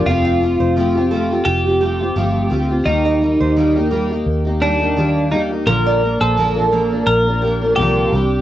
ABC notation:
X:1
M:4/4
L:1/16
Q:"Swing 16ths" 1/4=85
K:Fmix
V:1 name="Nylon-string guitar"
z f z c z2 A2 z2 G3 z3 | z e z c z2 B2 z2 G3 z3 | z d z c z2 B,2 z2 G3 z3 |]
V:2 name="Clean electric guitar"
F8 G8 | E6 z4 D4 E2 | B3 A4- A B4 G4 |]
V:3 name="Steel-string acoustic guitar"
[F,A,CFG]2 [A,CFG]2 [F,A,CFG] [CFG] [A,CFG] [CFG]2 [CFG] [A,CFG] [CFG] [F,A,CFG]2 [A,CFG] [CFG] | [E,G,B,EG]2 [G,B,EG]2 [E,G,B,EG] [B,EG] [G,B,EG] [B,EG]2 [B,EG] [G,B,EG] [B,EG] [E,G,B,G]2 [G,B,EG] [B,EG] | [B,,D,F,B,DB]2 [F,B,DB]2 [B,,D,F,B,DB] [F,B,DB] [F,B,DB] [F,B,DB]2 [F,B,DB] [F,B,DB] [F,B,DB] [B,,D,F,B,DB]2 [G,CDG]2 |]
V:4 name="Fingered electric bass" clef=bass
F,,,3 F,,,4- F,,, F,,,4 G,,,2 D,,2 | E,,3 E,,4- E,, E,,8 | B,,,3 B,,,4- B,,, B,,,4 C,,2 C,,2 |]